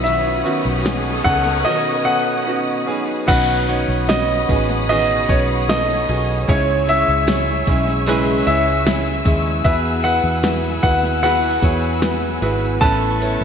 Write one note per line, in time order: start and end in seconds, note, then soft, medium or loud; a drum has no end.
0.00 0.42 B1 medium
0.00 0.42 D#3 medium
0.00 0.41 B3 medium
0.00 0.42 C#4 medium
0.00 0.42 F#4 medium
0.00 3.25 C#5 medium
0.00 0.81 E5 medium
0.00 3.25 F#5 medium
0.00 3.25 B5 medium
0.00 3.25 D#6 medium
0.00 riser medium
0.05 0.46 B2 medium
0.05 0.46 D#3 medium
0.05 0.46 F#3 medium
0.05 0.46 C#4 medium
0.05 0.44 B4 medium
0.05 closed hi-hat medium
0.44 0.84 D#3 medium
0.44 1.66 F#3 soft
0.44 0.83 B3 medium
0.44 0.83 C#4 medium
0.44 1.66 C#4 soft
0.44 0.84 F#4 medium
0.44 1.67 B4 soft
0.44 closed hi-hat medium
0.65 1.22 B1 medium
0.84 1.22 B3 medium
0.84 1.23 C#4 medium
0.84 1.23 D#4 medium
0.84 1.24 G#4 medium
0.84 snare loud
0.84 closed hi-hat medium
1.24 1.63 C#2 medium
1.24 1.62 B3 medium
1.24 1.63 C#4 medium
1.24 1.64 D#4 medium
1.24 1.64 A4 medium
1.24 1.67 F#5 loud
1.24 kick medium
1.24 closed hi-hat medium
1.46 snare soft
1.64 2.88 B2 medium
1.64 2.92 D#3 medium
1.64 2.90 F#3 medium
1.64 2.03 B3 medium
1.64 2.04 C#4 medium
1.64 2.89 C#4 medium
1.64 2.04 D#4 medium
1.64 2.88 D#4 medium
1.64 2.04 F#4 medium
1.64 2.87 B4 medium
1.64 2.83 D#5 medium
2.04 2.44 B3 medium
2.04 2.45 C#4 medium
2.04 2.45 D#4 medium
2.04 2.45 A4 medium
2.04 2.83 F#5 loud
2.46 2.84 B3 medium
2.46 2.85 C#4 medium
2.46 2.85 D#4 medium
2.46 2.86 F#4 loud
2.86 3.25 B3 medium
2.86 3.25 C#4 medium
2.86 3.27 C#4 medium
2.86 3.26 D#4 medium
2.86 3.28 D#4 medium
2.86 3.26 G#4 medium
2.86 3.28 B4 medium
2.90 3.27 F#3 soft
3.27 3.85 B1 loud
3.27 4.49 B2 medium
3.27 4.49 D#3 medium
3.27 4.49 F#3 medium
3.27 3.66 B3 loud
3.27 3.66 C#4 medium
3.27 4.50 C#4 medium
3.27 3.67 D#4 medium
3.27 4.48 D#4 medium
3.27 3.67 F#4 medium
3.27 3.67 B4 loud
3.27 4.47 B4 medium
3.27 9.61 C#5 medium
3.27 6.45 F#5 medium
3.27 4.11 F#5 medium
3.27 6.45 B5 medium
3.27 6.45 D#6 medium
3.27 kick loud
3.27 crash medium
3.27 ride medium
3.27 shaker medium
3.48 shaker soft
3.67 4.07 B3 medium
3.67 4.07 C#4 medium
3.67 4.07 D#4 medium
3.67 4.07 F#4 medium
3.67 4.07 C#5 medium
3.67 ride medium
3.67 shaker soft
3.88 4.45 B1 medium
3.88 shaker soft
4.08 4.47 B3 medium
4.08 4.47 C#4 medium
4.08 4.48 D#4 medium
4.08 4.48 F#4 medium
4.08 4.48 C#5 medium
4.08 4.88 D#5 medium
4.08 snare loud
4.08 ride medium
4.08 shaker medium
4.29 shaker soft
4.48 5.26 A1 medium
4.48 4.89 F#3 soft
4.48 4.87 B3 medium
4.48 4.87 C#4 medium
4.48 4.89 C#4 soft
4.48 4.89 D#4 soft
4.48 4.88 D#4 medium
4.48 4.88 F#4 medium
4.48 4.88 G#4 medium
4.48 4.89 B4 soft
4.48 kick medium
4.48 ride medium
4.70 snare soft
4.70 shaker soft
4.88 6.48 B2 medium
4.88 6.48 D#3 medium
4.88 6.49 F#3 medium
4.88 5.27 B3 medium
4.88 5.28 C#4 medium
4.88 6.49 C#4 medium
4.88 5.28 D#4 medium
4.88 6.50 D#4 medium
4.88 5.28 F#4 medium
4.88 5.28 G#4 loud
4.88 5.31 D#5 medium
4.88 ride medium
4.88 shaker medium
4.92 6.50 B4 medium
5.10 shaker soft
5.29 6.05 B1 medium
5.29 5.67 B3 medium
5.29 5.67 C#4 medium
5.29 5.68 D#4 medium
5.29 5.68 F#4 medium
5.29 5.38 C#5 medium
5.29 5.68 C#5 medium
5.29 kick medium
5.29 ride medium
5.29 shaker soft
5.50 shaker soft
5.68 6.07 B3 medium
5.68 6.07 C#4 medium
5.68 6.07 D#4 medium
5.68 6.07 F#4 medium
5.68 6.07 A4 medium
5.68 6.45 D#5 medium
5.68 snare loud
5.68 ride medium
5.68 shaker medium
5.89 shaker medium
6.09 6.46 B1 medium
6.09 6.47 B3 medium
6.09 6.46 C#4 medium
6.09 6.47 D#4 medium
6.09 6.47 F#4 medium
6.09 6.47 G#4 medium
6.09 ride medium
6.29 shaker soft
6.48 7.04 C#2 loud
6.48 7.63 G#2 medium
6.48 7.67 C#3 medium
6.48 6.86 G#3 loud
6.48 8.07 G#3 medium
6.48 6.86 C#4 medium
6.48 7.68 C#4 medium
6.48 6.86 E4 medium
6.48 7.68 E4 medium
6.48 6.87 G#4 medium
6.48 7.67 G#4 medium
6.48 6.90 C#5 medium
6.48 6.87 C#5 loud
6.48 9.62 E5 medium
6.48 12.78 G#5 medium
6.48 12.78 E6 medium
6.48 kick loud
6.48 ride medium
6.48 shaker medium
6.69 shaker medium
6.87 7.25 G#3 medium
6.87 7.26 C#4 medium
6.87 7.26 E4 medium
6.87 7.26 G#4 medium
6.87 8.43 E5 loud
6.87 7.26 E5 medium
6.87 ride medium
6.87 shaker soft
7.08 7.63 C#2 medium
7.08 shaker soft
7.27 7.65 G#3 medium
7.27 7.66 C#4 medium
7.27 7.66 E4 medium
7.27 7.66 G#4 medium
7.27 7.66 C#5 medium
7.27 snare loud
7.27 ride medium
7.27 shaker medium
7.48 shaker soft
7.67 8.43 B1 loud
7.67 8.05 G#3 medium
7.67 8.06 C#4 medium
7.67 8.08 C#4 soft
7.67 8.06 E4 medium
7.67 8.08 E4 soft
7.67 8.07 G#4 medium
7.67 8.06 G#4 medium
7.67 8.06 E5 medium
7.67 kick medium
7.67 ride medium
7.87 snare soft
7.87 shaker soft
8.06 9.65 C#3 medium
8.06 8.45 G#3 loud
8.06 9.65 G#3 medium
8.06 8.45 C#4 loud
8.06 9.66 C#4 loud
8.06 8.45 E4 loud
8.06 9.67 E4 loud
8.06 8.46 G#4 loud
8.06 8.46 B4 loud
8.06 ride medium
8.06 shaker medium
8.11 9.68 G#4 medium
8.27 shaker soft
8.47 9.22 C#2 medium
8.47 8.84 G#3 medium
8.47 8.84 C#4 medium
8.47 8.85 E4 medium
8.47 8.85 G#4 medium
8.47 8.85 C#5 medium
8.47 9.22 E5 medium
8.47 ride medium
8.47 shaker soft
8.67 shaker soft
8.85 9.23 G#3 medium
8.85 9.23 C#4 medium
8.85 9.24 E4 medium
8.85 9.24 G#4 medium
8.85 9.24 C#5 medium
8.85 snare loud
8.85 ride medium
8.85 shaker medium
9.06 shaker soft
9.25 9.62 D#2 medium
9.25 9.63 G#3 medium
9.25 9.63 C#4 medium
9.25 9.63 E4 medium
9.25 9.63 G#4 medium
9.25 9.64 E5 medium
9.25 kick medium
9.25 ride medium
9.45 shaker soft
9.64 10.20 E2 loud
9.64 10.79 B2 medium
9.64 11.22 F#3 medium
9.64 10.02 B3 loud
9.64 11.23 B3 medium
9.64 10.02 E4 medium
9.64 11.23 E4 medium
9.64 10.02 F#4 medium
9.64 10.03 G#4 medium
9.64 13.44 B4 medium
9.64 10.03 B4 loud
9.64 9.73 E5 medium
9.64 12.79 F#5 medium
9.64 kick loud
9.64 ride medium
9.64 shaker medium
9.68 11.23 G#4 medium
9.85 shaker soft
10.04 10.41 B3 medium
10.04 10.42 E4 medium
10.04 10.42 F#4 medium
10.04 10.42 G#4 medium
10.04 10.43 B4 medium
10.04 10.81 F#5 medium
10.04 ride medium
10.04 shaker soft
10.24 10.79 E2 loud
10.24 shaker soft
10.43 10.81 B3 medium
10.43 10.81 E4 medium
10.43 10.81 F#4 medium
10.43 10.82 G#4 medium
10.43 10.82 B4 medium
10.43 snare loud
10.43 ride medium
10.43 shaker medium
10.63 shaker soft
10.83 11.59 D#2 medium
10.83 11.21 B3 medium
10.83 11.21 E4 medium
10.83 11.21 F#4 medium
10.83 11.22 G#4 medium
10.83 11.22 B4 medium
10.83 11.21 F#5 medium
10.83 kick medium
10.83 ride medium
11.03 snare soft
11.03 shaker soft
11.22 12.42 F#3 loud
11.22 11.61 B3 loud
11.22 12.43 B3 loud
11.22 11.61 E4 medium
11.22 12.42 E4 loud
11.22 11.61 F#4 loud
11.22 11.61 G#4 medium
11.22 12.40 G#4 medium
11.22 11.61 B4 loud
11.22 12.87 F#5 loud
11.22 ride medium
11.22 shaker medium
11.42 shaker soft
11.62 12.38 E2 medium
11.62 12.00 B3 medium
11.62 12.00 E4 medium
11.62 12.01 F#4 medium
11.62 12.01 G#4 medium
11.62 12.01 C#5 medium
11.62 kick medium
11.62 ride medium
11.62 shaker soft
11.82 shaker soft
12.02 12.40 B3 medium
12.02 12.40 E4 medium
12.02 12.40 F#4 medium
12.02 12.40 G#4 medium
12.02 12.41 B4 medium
12.02 snare loud
12.02 ride medium
12.02 shaker medium
12.22 shaker medium
12.41 12.79 G#1 loud
12.41 12.79 B3 medium
12.41 12.81 B3 soft
12.41 12.80 E4 medium
12.41 12.80 F#4 medium
12.41 12.81 G#4 medium
12.41 12.80 G#4 medium
12.41 12.80 B4 loud
12.41 ride medium
12.62 shaker soft
12.80 13.38 A1 loud
12.80 13.44 A2 medium
12.80 13.44 E3 medium
12.80 13.44 A3 medium
12.80 13.19 B3 loud
12.80 13.44 C#4 medium
12.80 13.20 C#4 medium
12.80 13.44 E4 medium
12.80 13.20 E4 medium
12.80 13.20 A4 medium
12.80 13.44 B4 medium
12.80 13.20 B4 loud
12.80 13.44 E5 medium
12.80 13.44 A5 medium
12.80 13.44 A5 loud
12.80 13.44 C#6 medium
12.80 kick loud
12.80 ride medium
12.80 shaker medium
13.02 shaker soft
13.21 13.44 B3 medium
13.21 13.44 C#4 medium
13.21 13.44 E4 medium
13.21 13.44 A4 medium
13.21 13.44 C#5 medium
13.21 ride medium
13.21 shaker soft
13.41 13.44 A1 medium